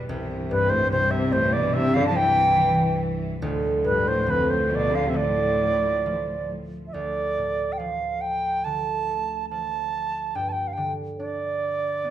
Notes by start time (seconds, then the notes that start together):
Already playing: E1 E2 B2 E3 G3
0.09 C2 G2 E3
0.50 G2 B4
0.70 A2 C5
0.91 G2 C3 C5
1.11 C3 E5
1.32 G2 A2 C5
1.53 B2 D5
1.74 C3 E5
1.94 D3 F5
2.07 F3 A5
2.16 E3 G5
2.57 E3
3.42 D1 D2 A2 F3
3.84 G2 A2 B4
4.07 A2 C5
4.27 F2 D3 B4
4.50 A2 C5
4.70 A2 B2
4.75 D5
4.92 D3 F5
5.06 C3 E5
5.14 A2 D3 D5
6.06 F3
6.87 E5
6.93 D2 D5
7.37 A2
7.72 G5
7.78 F3 F5
8.21 G5
8.64 D3 A5
9.08 A3
9.50 F3 A5
10.35 G2 G5
10.49 G5 A5
10.68 F5
10.73 G5
10.77 D3
11.18 D4 D5
12.04 B3